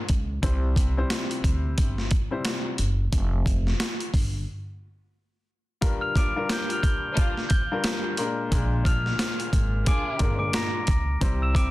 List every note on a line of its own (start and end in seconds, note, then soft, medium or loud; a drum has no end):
0.09 0.39 C#2 medium
0.09 kick medium
0.09 closed hi-hat medium
0.42 1.02 C2 loud
0.42 0.92 C3 loud
0.42 0.92 G3 medium
0.42 0.92 E4 medium
0.42 0.93 C5 loud
0.42 kick loud
0.42 closed hi-hat medium
0.76 kick loud
0.76 closed hi-hat medium
0.97 2.04 C3 medium
0.97 2.04 G3 medium
0.97 2.04 E4 medium
0.97 2.05 C5 loud
1.10 cross-stick medium
1.10 snare loud
1.10 closed hi-hat medium
1.31 closed hi-hat medium
1.44 1.74 D2 medium
1.44 kick medium
1.44 closed hi-hat medium
1.78 2.07 G1 loud
1.78 kick medium
1.78 closed hi-hat medium
1.98 snare soft
2.11 kick medium
2.11 closed hi-hat medium
2.31 2.75 C3 medium
2.31 2.75 G3 medium
2.31 2.75 E4 medium
2.31 2.76 C5 loud
2.45 cross-stick medium
2.45 snare loud
2.45 closed hi-hat medium
2.78 3.08 F#1 medium
2.78 closed hi-hat medium
3.12 3.72 F1 loud
3.12 kick loud
3.12 closed hi-hat medium
3.46 kick loud
3.46 closed hi-hat medium
3.67 snare soft
3.80 cross-stick medium
3.80 snare loud
3.80 closed hi-hat medium
4.00 closed hi-hat medium
4.14 4.43 G1 medium
4.14 kick medium
4.14 open hi-hat medium
5.81 6.31 G2 loud
5.81 6.31 G3 medium
5.81 6.32 F4 medium
5.81 6.32 A#4 loud
5.81 kick loud
5.81 closed hi-hat medium
6.01 6.14 F6 medium
6.01 6.14 F7 medium
6.16 6.34 A#3 medium
6.16 6.34 D4 medium
6.16 6.34 F4 medium
6.16 6.47 D6 medium
6.16 6.47 D7 medium
6.16 kick loud
6.16 closed hi-hat medium
6.36 7.43 G2 loud
6.36 7.43 G3 medium
6.36 7.43 F4 medium
6.36 7.44 A#4 loud
6.49 6.70 G6 medium
6.49 6.70 G7 medium
6.49 cross-stick medium
6.49 snare loud
6.49 closed hi-hat medium
6.70 6.83 F6 medium
6.70 6.84 F7 medium
6.70 closed hi-hat medium
6.83 7.46 G6 medium
6.83 7.47 G7 medium
6.83 kick medium
6.83 closed hi-hat medium
7.15 7.44 A#3 medium
7.15 7.44 D4 medium
7.15 7.44 F4 loud
7.15 kick medium
7.15 closed hi-hat medium
7.37 snare soft
7.49 7.80 G6 medium
7.49 7.81 G7 medium
7.49 kick medium
7.49 closed hi-hat medium
7.72 8.15 G2 loud
7.72 8.15 G3 medium
7.72 8.16 F4 medium
7.72 8.16 A#4 loud
7.84 cross-stick medium
7.84 snare loud
7.84 closed hi-hat medium
8.17 8.50 A#2 loud
8.17 8.50 G#3 medium
8.17 8.50 D4 medium
8.17 8.50 A#4 loud
8.17 closed hi-hat medium
8.51 9.11 A#1 loud
8.51 10.10 A#2 loud
8.51 10.10 G#3 loud
8.51 10.10 D4 medium
8.51 10.10 A#4 medium
8.51 kick loud
8.51 closed hi-hat medium
8.85 9.03 A#3 medium
8.85 9.03 D4 medium
8.85 9.03 F4 medium
8.85 9.37 F6 medium
8.85 9.37 F7 medium
8.85 kick loud
8.85 closed hi-hat medium
9.06 snare soft
9.19 cross-stick medium
9.19 snare loud
9.19 closed hi-hat medium
9.40 closed hi-hat medium
9.53 9.83 G#1 medium
9.53 kick loud
9.53 closed hi-hat medium
9.86 10.32 D4 loud
9.86 10.32 F4 loud
9.86 10.32 G#4 loud
9.86 10.38 D6 medium
9.86 10.39 D7 medium
9.86 kick medium
9.86 closed hi-hat medium
10.19 10.50 G1 loud
10.19 10.83 A#2 loud
10.19 10.83 G#3 medium
10.19 10.83 D4 medium
10.19 10.83 A#4 loud
10.19 kick medium
10.19 closed hi-hat medium
10.39 10.52 D6 medium
10.39 10.52 D7 medium
10.53 10.85 A#5 medium
10.53 10.85 A#6 medium
10.53 cross-stick medium
10.53 snare loud
10.53 closed hi-hat medium
10.87 11.18 C#2 medium
10.87 kick medium
10.87 closed hi-hat medium
11.21 11.71 C2 loud
11.21 11.70 C3 loud
11.21 11.71 G3 medium
11.21 11.71 E4 medium
11.21 11.71 C5 loud
11.21 kick loud
11.21 closed hi-hat medium
11.42 11.54 E6 medium
11.42 11.54 E7 medium
11.54 11.71 C4 medium
11.54 11.71 E4 medium
11.54 11.71 G4 medium
11.54 11.71 D6 medium
11.54 11.71 D7 medium
11.54 kick loud
11.54 closed hi-hat medium